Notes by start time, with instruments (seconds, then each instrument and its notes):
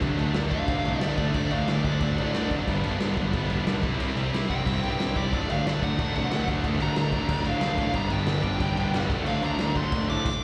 0.01 picked electric bass D2, distorted electric guitar D3 F#3 A3 D4, kick, crash
0.17 picked electric bass D2, distorted electric guitar D3 F#3 A3 D4, crash
0.33 picked electric bass D2, distorted electric guitar D3 F#3 A3 D4, snare, crash
0.49 picked electric bass D2, distorted electric guitar D3 F#3 A3 D4, lead electric guitar F5, kick, crash
0.66 picked electric bass D2, distorted electric guitar D3 F#3 A3 D4, kick, crash
0.84 picked electric bass C2, distorted electric guitar D3 F#3 A3 D4, crash
1.00 picked electric bass D2, distorted electric guitar D3 F#3 A3 D4, lead electric guitar D5, snare, crash
1.17 picked electric bass D2, distorted electric guitar D3 F#3 A3 D4, lead electric guitar D5, kick, crash
1.34 picked electric bass D2, distorted electric guitar D3 F#3 A3 D4, lead electric guitar D5, kick, crash
1.50 picked electric bass D2, distorted electric guitar D3 F#3 A3 D4, lead electric guitar F5, crash
1.68 picked electric bass D2, distorted electric guitar D3 F#3 A3 D4, lead electric guitar D5, snare, crash
1.84 picked electric bass D2, distorted electric guitar D3 F#3 A3 D4, lead electric guitar D5, kick, crash
2.01 picked electric bass D2, distorted electric guitar D3 F#3 A3 D4, kick, crash
2.17 picked electric bass A2, distorted electric guitar D3 F#3 A3 D4, crash
2.34 picked electric bass D2, distorted electric guitar D3 F#3 A3 D4, snare, crash
2.51 picked electric bass F#1, distorted electric guitar D3 F#3 A3 D4, kick, crash
2.68 picked electric bass G1, distorted electric guitar G2 D3 G3 B3 D4, kick, crash
2.84 picked electric bass G1, distorted electric guitar G2 D3 G3 B3 D4, crash
3.00 picked electric bass G1, distorted electric guitar G2 D3 G3 B3 D4, snare, crash
3.17 picked electric bass G1, distorted electric guitar G2 D3 G3 B3 D4, kick, crash
3.33 picked electric bass G1, distorted electric guitar G2 D3 G3 B3 D4, kick, crash
3.50 picked electric bass E1, distorted electric guitar G2 D3 G3 B3 D4, crash
3.66 picked electric bass B1, distorted electric guitar G2 D3 G3 B3 D4, snare, crash
3.83 picked electric bass C2, distorted electric guitar C3 G3 C4 E4, kick, crash
3.98 picked electric bass C2, distorted electric guitar C3 G3 C4 E4, crash
4.15 picked electric bass C2, distorted electric guitar C3 G3 C4 E4, crash
4.33 picked electric bass C2, distorted electric guitar C3 G3 C4 E4, snare, crash
4.49 picked electric bass C2, distorted electric guitar C3 G3 C4 E4, lead electric guitar G5, kick, crash
4.65 picked electric bass C2, distorted electric guitar C3 G3 C4 E4, kick, crash
4.83 picked electric bass G2, distorted electric guitar C3 G3 C4 E4, crash
4.99 picked electric bass C2, distorted electric guitar C3 G3 C4 E4, snare, crash
5.16 picked electric bass C2, distorted electric guitar C3 G3 C4 E4, lead electric guitar D5, kick, crash
5.32 picked electric bass D2, distorted electric guitar D3 F#3 A3 D4, lead electric guitar D5, kick, crash
5.49 picked electric bass D2, distorted electric guitar D3 F#3 A3 D4, lead electric guitar F5, crash
5.66 picked electric bass D2, distorted electric guitar D3 F#3 A3 D4, lead electric guitar D5, snare, crash
5.82 picked electric bass D2, distorted electric guitar D3 F#3 A3 D4, lead electric guitar F#5, kick, crash
5.99 picked electric bass D2, distorted electric guitar D3 F#3 A3 D4, kick, crash
6.15 picked electric bass C2, distorted electric guitar D3 F#3 A3 D4, crash
6.31 picked electric bass D2, distorted electric guitar D3 F#3 A3 D4, snare, crash
6.48 picked electric bass D2, distorted electric guitar D3 F#3 A3 D4, kick, crash
6.64 picked electric bass D2, distorted electric guitar D3 F#3 A3 D4, kick, crash
6.80 picked electric bass D2, distorted electric guitar D3 F#3 A3 D4, lead electric guitar A#5, crash
6.96 picked electric bass D2, distorted electric guitar D3 F#3 A3 D4, lead electric guitar A#5, snare, crash
7.12 picked electric bass D2, distorted electric guitar D3 F#3 A3 D4, kick, crash
7.28 picked electric bass D2, distorted electric guitar D3 F#3 A3 D4, kick, crash
7.44 picked electric bass A2, distorted electric guitar D3 F#3 A3 D4, lead electric guitar F5, crash
7.61 picked electric bass D2, distorted electric guitar D3 F#3 A3 D4, snare, crash
7.78 picked electric bass A1, distorted electric guitar D3 F#3 A3 D4, kick, crash
7.94 picked electric bass G1, distorted electric guitar G2 D3 G3 B3 D4, lead electric guitar A#5, kick, crash
8.10 picked electric bass G1, distorted electric guitar G2 D3 G3 B3 D4, lead electric guitar G5, crash
8.26 picked electric bass G1, distorted electric guitar G2 D3 G3 B3 D4, snare, crash
8.42 picked electric bass G1, distorted electric guitar G2 D3 G3 B3 D4, kick, crash
8.59 picked electric bass G1, distorted electric guitar G2 D3 G3 B3 D4, kick, crash
8.76 picked electric bass E1, distorted electric guitar G2 D3 G3 B3 D4, crash
8.93 picked electric bass G1, distorted electric guitar G2 D3 G3 B3 D4, snare, crash
9.09 picked electric bass D2, distorted electric guitar D3 F#3 A3 D4, kick, crash
9.24 picked electric bass D2, distorted electric guitar D3 F#3 A3 D4, lead electric guitar F5, crash
9.42 picked electric bass D2, distorted electric guitar D3 F#3 A3 D4, lead electric guitar A#5, crash
9.59 picked electric bass D2, distorted electric guitar D3 F#3 A3 D4, snare, crash
9.75 picked electric bass D2, distorted electric guitar D3 F#3 A3 D4, lead electric guitar C6, kick, crash
9.92 picked electric bass D2, distorted electric guitar D3 F#3 A3 D4, kick, crash
10.10 picked electric bass A2, distorted electric guitar D3 F#3 A3 D4, lead electric guitar D6, crash
10.26 kick, crash